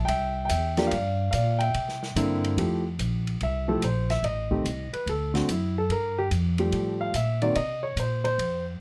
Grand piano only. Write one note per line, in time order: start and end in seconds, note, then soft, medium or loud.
0.05 0.47 E5 medium
0.05 0.44 G5 medium
0.45 0.88 E5 medium
0.45 0.86 G5 medium
0.77 0.90 F3 medium
0.77 0.90 A#3 medium
0.77 0.90 D4 medium
0.77 0.91 G4 medium
0.87 1.30 D5 medium
0.87 1.28 F5 medium
1.31 1.59 D5 medium
1.31 1.60 F5 medium
1.59 2.40 E5 medium
1.59 2.39 G5 medium
2.16 2.58 D3 medium
2.16 2.58 A#3 medium
2.16 2.58 C4 medium
2.16 2.57 E4 medium
2.57 2.82 F3 medium
2.57 2.83 A3 medium
2.57 2.83 E4 medium
2.57 2.83 G4 medium
3.43 3.69 E5 medium
3.68 3.81 F3 medium
3.68 3.81 A3 medium
3.68 3.81 E4 medium
3.68 3.83 G4 medium
3.68 3.81 A4 medium
3.84 4.10 C5 medium
4.10 4.24 E5 loud
4.24 4.89 D#5 medium
4.51 4.63 D#3 medium
4.51 4.64 A3 medium
4.51 4.64 C4 medium
4.51 4.64 G4 medium
4.93 5.07 B4 medium
5.09 5.35 A4 medium
5.34 5.47 D3 medium
5.34 5.47 A3 medium
5.34 5.47 C4 medium
5.34 5.47 F#4 medium
5.51 5.76 E4 medium
5.78 5.91 A4 medium
5.91 6.17 A#4 medium
6.18 6.26 G4 medium
6.59 7.12 F3 medium
6.59 7.12 G3 medium
6.59 7.12 A3 medium
6.59 7.12 G4 medium
7.01 7.14 F5 medium
7.16 7.42 E5 medium
7.42 7.54 D#3 medium
7.42 7.55 A#3 medium
7.42 7.55 C4 medium
7.42 7.55 F#4 medium
7.42 7.55 D5 medium
7.56 7.83 D#5 medium
7.83 7.97 C#5 medium
8.00 8.23 C5 medium
8.24 8.63 C5 loud